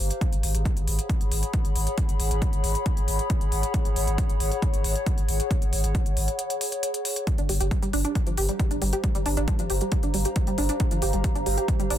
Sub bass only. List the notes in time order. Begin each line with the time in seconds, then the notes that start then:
0.00 G1
0.33 G#1
0.43 G#1
0.55 G#1
0.77 G#1
0.87 G#1
1.21 G#1
1.32 G#1
1.65 G#1
1.76 G#1
2.09 G#1
2.20 G#1
2.31 G#1
2.53 G#1
2.64 G#1
2.97 G#1
3.08 G#1
3.41 G#1
3.52 G#1
3.85 G#1
3.96 G#1
4.07 G#1
4.29 G#1
4.40 G#1
4.73 G#1
4.84 G#1
5.18 G#1
5.29 G#1
5.62 G#1
5.73 G#1
5.84 G#1
6.06 G#1
6.17 G#1
7.38 G1
7.49 G1
7.60 G1
7.82 G1
7.93 G1
8.27 G1
8.38 G1
8.71 G1
8.82 G1
9.15 G1
9.26 G1
9.37 G1
9.59 G1
9.70 G1
10.03 G1
10.14 G1
10.47 G1
10.58 G1
10.91 G1
11.02 G1
11.14 G1
11.36 G1
11.46 G1
11.80 G1
11.90 G1